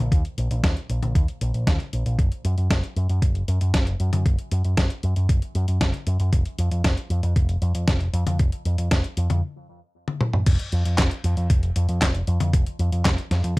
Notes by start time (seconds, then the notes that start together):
0.12 D#2, kick, closed hi-hat
0.25 closed hi-hat
0.38 A#1, closed hi-hat
0.51 A#1, closed hi-hat
0.63 D#2, kick, snare, closed hi-hat
0.77 closed hi-hat
0.89 A#1, closed hi-hat
1.02 A#1, closed hi-hat, high tom
1.15 D#2, kick, closed hi-hat
1.28 closed hi-hat
1.41 A#1, closed hi-hat
1.54 A#1, closed hi-hat
1.67 D#2, kick, snare, closed hi-hat, high tom
1.80 closed hi-hat
1.93 A#1, closed hi-hat
2.06 A#1, closed hi-hat
2.19 F#1, kick, closed hi-hat
2.32 closed hi-hat
2.45 F#2, closed hi-hat
2.58 F#2, closed hi-hat
2.70 F#1, kick, snare, closed hi-hat
2.84 closed hi-hat
2.96 F#2, closed hi-hat
3.09 F#2, closed hi-hat
3.22 F#1, kick, closed hi-hat
3.35 closed hi-hat
3.48 F#2, closed hi-hat
3.61 F#2, closed hi-hat
3.74 F#1, kick, snare, closed hi-hat
3.87 closed hi-hat
4.00 F#2, closed hi-hat
4.13 F#2, closed hi-hat, high tom
4.26 F#1, kick, closed hi-hat
4.39 closed hi-hat
4.51 F#2, closed hi-hat
4.64 F#2, closed hi-hat
4.77 F#1, kick, snare, closed hi-hat
4.90 closed hi-hat
5.03 F#2, closed hi-hat
5.16 F#2, closed hi-hat
5.29 F#1, kick, closed hi-hat
5.42 closed hi-hat
5.55 F#2, closed hi-hat
5.68 F#2, closed hi-hat
5.81 F#1, kick, snare, closed hi-hat, high tom
5.94 closed hi-hat
6.07 F#2, closed hi-hat
6.20 F#2, closed hi-hat
6.33 F1, kick, closed hi-hat
6.45 closed hi-hat
6.58 F2, closed hi-hat
6.71 F2, closed hi-hat
6.84 F1, kick, snare, closed hi-hat
6.97 closed hi-hat
7.10 F2, closed hi-hat
7.23 F2, closed hi-hat
7.36 F1, kick, closed hi-hat
7.49 closed hi-hat
7.62 F2, closed hi-hat
7.75 F2, closed hi-hat
7.88 F1, kick, snare, closed hi-hat
8.01 closed hi-hat
8.13 F2, closed hi-hat
8.27 F2, closed hi-hat, high tom
8.39 F1, kick, closed hi-hat
8.52 closed hi-hat
8.65 F2, closed hi-hat
8.78 F2, closed hi-hat
8.91 F1, kick, snare, closed hi-hat
9.04 closed hi-hat
9.17 F2, closed hi-hat
9.30 F2, closed hi-hat, high tom
10.08 high tom
10.21 mid tom
10.33 mid tom
10.46 F1, kick, closed hi-hat, crash
10.59 closed hi-hat
10.72 F2, closed hi-hat
10.85 F2, closed hi-hat
10.98 F1, kick, snare, clap, closed hi-hat
11.11 closed hi-hat
11.24 F2, closed hi-hat
11.37 F2, closed hi-hat
11.50 F1, kick, closed hi-hat
11.63 closed hi-hat
11.76 F2, closed hi-hat
11.89 F2, closed hi-hat
12.02 F1, kick, snare, clap, closed hi-hat
12.15 closed hi-hat
12.27 F2, closed hi-hat
12.40 F2, closed hi-hat, high tom
12.53 F1, kick, closed hi-hat
12.66 closed hi-hat
12.79 F2, closed hi-hat
12.92 F2, closed hi-hat
13.05 F1, kick, snare, clap, closed hi-hat
13.18 closed hi-hat
13.31 F2, snare, closed hi-hat
13.44 F2, closed hi-hat